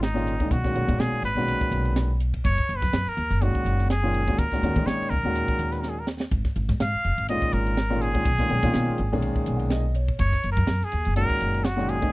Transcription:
Already playing: G#1
0.03 D#4, snare, hi-hat pedal, ride
0.14 A#2 D#3 G#3 C#4 F4, snare
0.27 hi-hat pedal, ride
0.40 A#2 D#3 G#3 C#4 D#4, kick, ride
0.51 B1 F#4, kick, hi-hat pedal, ride
0.64 A#2 D#3 G#3 C#4 F#4, kick, snare
0.74 B1 A#2 D#3 G#3 C#4 F#4, hi-hat pedal, ride
0.88 A#2 B2 D#3 G#3 C#4 F#4, kick, ride
0.98 B2 G#4, snare, hi-hat pedal, ride
1.12 muted upright bass stroke
1.22 G#1 B4, hi-hat pedal, ride
1.36 B1 A#2 D#3 G#3 C#4 F#4, snare
1.48 hi-hat pedal, ride
1.61 muted upright bass stroke, kick
1.71 B1, hi-hat pedal, ride
1.85 ride
1.96 snare, hi-hat pedal, ride
2.20 hi-hat pedal, ride
2.34 kick, ride
2.45 F#1 C#5, kick, hi-hat pedal, ride
2.58 kick
2.69 F#1, hi-hat pedal, ride
2.77 B4
2.82 F#2, kick, snare, ride
2.93 F#2, snare, hi-hat pedal, ride
3.07 A#4, muted upright bass stroke, snare
3.17 D#2, hi-hat pedal, ride
3.30 F#1, snare, ride
3.41 A#2 D#3 G#3 C#4 F#4, hi-hat pedal, ride
3.55 muted upright bass stroke, kick
3.65 F#1, hi-hat pedal, ride
3.79 snare, ride
3.90 G#4, snare, hi-hat pedal, ride
4.03 A#2 D#3 G#3 C#4 F4
4.14 hi-hat pedal, ride
4.27 A#2 D#3 G#3 C#4 F#4, kick, ride
4.38 D#2 A#4, kick, hi-hat pedal, ride
4.52 A#2 D#3 G#3 C#4 F#4, kick, snare
4.62 D#2 A#2 D#3 G#3 C#4 F#4, hi-hat pedal, ride
4.76 A#2 D#3 G#3 C#4 D#4, kick, ride
4.86 D#3 C#5, snare, hi-hat pedal, ride
5.00 muted upright bass stroke, snare
5.10 C#2 A#4, hi-hat pedal, ride
5.23 D#2 A#2 D#3 G#3 C#4 F#4
5.35 hi-hat pedal, ride
5.48 muted upright bass stroke, kick
5.59 D#2, hi-hat pedal, ride
5.72 B4, snare, ride
5.80 A#4, snare, hi-hat pedal
5.89 G#4
5.99 A#4
6.07 snare, hi-hat pedal
6.20 snare
6.31 G#1, kick, hi-hat pedal, ride
6.45 kick, snare
6.56 G#1, hi-hat pedal, ride
6.69 G#2, kick, snare, ride
6.80 G#2 F5, snare, hi-hat pedal, ride
6.94 muted upright bass stroke
7.04 F1, hi-hat pedal, ride
7.18 G#1, ride
7.28 A#2 D#3 G#3 C#4 F4 D#5, hi-hat pedal, ride
7.41 muted upright bass stroke, kick
7.53 G#1 A#4, hi-hat pedal, ride
7.67 ride
7.77 snare, hi-hat pedal, ride
7.90 A#2 D#3 G#3 C#4 F4, snare
8.01 G#4, hi-hat pedal, ride
8.13 A#2 D#3 G#3 C#4 F4, kick, ride
8.25 B1, kick, hi-hat pedal, ride
8.39 A#2 D#3 G#3 C#4 F4, kick, snare
8.49 B1 A#2 D#3 G#3 C#4 G#4, hi-hat pedal, ride
8.63 A#2 B2 D#3 G#3 C#4 F4, kick, snare, ride
8.74 B2, snare, hi-hat pedal, ride
8.89 muted upright bass stroke
8.98 G#1, hi-hat pedal, ride
9.12 B1 A#2 D#3 G#3 C#4 G#4
9.22 hi-hat pedal, ride
9.36 muted upright bass stroke, kick
9.46 B1 G#5, hi-hat pedal, ride
9.57 F#5, ride
9.70 D#5, snare, hi-hat pedal, ride
9.95 C#5, hi-hat pedal, ride
10.08 kick, ride
10.19 F#1 C#5, kick, hi-hat pedal, ride
10.32 kick, snare
10.43 F#1, hi-hat pedal, ride
10.52 A#4
10.57 F#2, kick, ride
10.67 F#2, snare, hi-hat pedal, ride
10.81 G#4, muted upright bass stroke, snare
10.92 D#2, hi-hat pedal, ride
11.05 F#1, ride
11.16 A#2 D#3 G#3 C#4 F#4 A#4, hi-hat pedal, ride
11.30 muted upright bass stroke, kick
11.40 F#1, hi-hat pedal, ride
11.54 ride
11.64 F#4, snare, hi-hat pedal, ride
11.76 A#2 D#3 G#3 C#4 F#4, snare
11.89 G#4, hi-hat pedal, ride
12.01 A#2 D#3 G#3 C#4 D#4, kick, ride

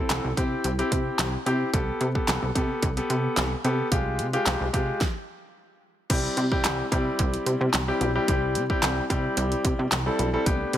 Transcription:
Already playing: C4 E4 A4
0.10 C2, snare, clap, closed hi-hat
0.24 C2
0.37 C3 C4 E4 G4, kick, closed hi-hat
0.64 C2, closed hi-hat
0.79 C4 E4 G4, closed hi-hat
0.92 C3, kick, closed hi-hat
1.19 C2, snare, clap, closed hi-hat
1.46 C3 C4 E4 G4, closed hi-hat
1.73 C2 B3 G4 A4, kick, closed hi-hat
2.01 C3, closed hi-hat
2.15 B3 G4 A4, kick
2.28 C2, snare, clap, closed hi-hat
2.43 C2
2.55 C3 B3 G4 A4, kick, closed hi-hat
2.83 C2, kick, closed hi-hat
2.97 B3 G4 A4, closed hi-hat
3.10 C3, closed hi-hat
3.37 C2, snare, clap, closed hi-hat
3.64 C3 B3 G4 A4, closed hi-hat
3.91 C2 G#3 F4 G4, kick, closed hi-hat
4.19 C3, closed hi-hat
4.33 G#3 F4 G4, closed hi-hat
4.46 C2, snare, clap, closed hi-hat
4.61 C2
4.73 C3 G#3 F4 G4, kick, closed hi-hat
5.01 kick, snare
6.10 C2 G3 C4 E4 G4, kick, closed hi-hat, crash
6.37 C3, closed hi-hat
6.51 G3 C4 E4 G4, kick
6.64 C2, snare, clap, closed hi-hat
6.91 C3 G3 C4 E4 G4, kick, closed hi-hat
7.19 C2, kick, closed hi-hat
7.34 closed hi-hat
7.46 C3, closed hi-hat
7.61 C3
7.73 C2, snare, clap, closed hi-hat
7.88 G3 C4 E4 G4
8.01 B1, closed hi-hat
8.15 G3 C4 E4 G4
8.28 C2 G3 C4 E4 G4, kick, closed hi-hat
8.55 C3, closed hi-hat
8.70 G3 C4 E4 G4, kick
8.83 C2, snare, clap, closed hi-hat
9.10 C3 G3 C4 E4 G4, kick, closed hi-hat
9.37 C2, closed hi-hat
9.52 closed hi-hat
9.65 C3, kick, closed hi-hat
9.79 C3
9.92 C2, snare, clap, closed hi-hat
10.06 G3 C4 E4 A4
10.19 B1, closed hi-hat
10.33 G3 C4 E4 A4
10.46 C2 A3 B3 D4 G4, kick, closed hi-hat
10.73 C3, closed hi-hat

